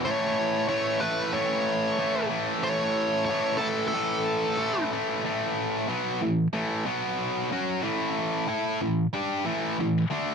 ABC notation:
X:1
M:4/4
L:1/8
Q:1/4=93
K:Amix
V:1 name="Lead electric guitar"
c2 c B c3 z | c2 c A A3 z | z8 | z8 |]
V:2 name="Distorted electric guitar" clef=bass
[A,,E,A,]2 [A,,E,A,] [A,,E,A,] [A,,E,A,]2 [A,,E,A,] [A,,E,A,] | [A,,E,A,]2 [A,,E,A,] [A,,E,A,] [A,,E,A,]2 [A,,E,A,] [A,,E,A,] | [A,,E,A,]2 [B,,F,B,] [A,,E,] [A,,E,A,] [B,,F,B,]2 [F,CF] | [A,,E,A,]2 [A,EA] [A,,E,] [G,DG] [A,,E,A,] [A,,E,] [D,A,D] |]